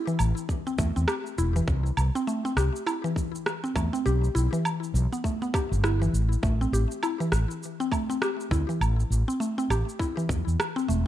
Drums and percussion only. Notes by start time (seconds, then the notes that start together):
0.08 shaker
0.19 low woodblock, shaker
0.37 shaker
0.49 kick, shaker
0.67 shaker
0.79 kick, shaker
0.97 shaker
1.08 cross-stick, low woodblock, shaker
1.26 shaker
1.38 shaker
1.56 shaker
1.68 kick, shaker
1.86 shaker
1.97 low woodblock, shaker
2.16 shaker
2.28 shaker
2.46 shaker
2.57 cross-stick, shaker
2.76 shaker
2.87 low woodblock, shaker
3.05 shaker
3.16 kick, shaker
3.35 shaker
3.46 cross-stick, shaker
3.65 shaker
3.76 kick, low woodblock, shaker
3.95 shaker
4.07 shaker
4.24 shaker
4.37 shaker
4.54 shaker
4.65 low woodblock, shaker
4.84 shaker
4.96 shaker
5.13 shaker
5.24 kick, shaker
5.43 shaker
5.54 kick, low woodblock, shaker
5.73 shaker
5.84 cross-stick, shaker
6.02 shaker
6.15 shaker
6.32 shaker
6.43 kick, shaker
6.62 shaker
6.74 shaker
6.91 shaker
7.03 low woodblock, shaker
7.21 shaker
7.32 cross-stick, shaker
7.51 shaker
7.63 shaker
7.81 shaker
7.92 kick, low woodblock, shaker
8.11 shaker
8.22 cross-stick, shaker
8.40 shaker
8.51 kick, shaker
8.70 shaker
8.81 low woodblock, shaker
9.00 shaker
9.12 shaker
9.30 shaker
9.42 shaker
9.59 shaker
9.70 low woodblock, shaker
9.89 shaker
9.99 kick, shaker
10.19 shaker
10.29 kick, shaker
10.48 shaker
10.60 cross-stick, low woodblock, shaker
10.78 shaker
10.90 shaker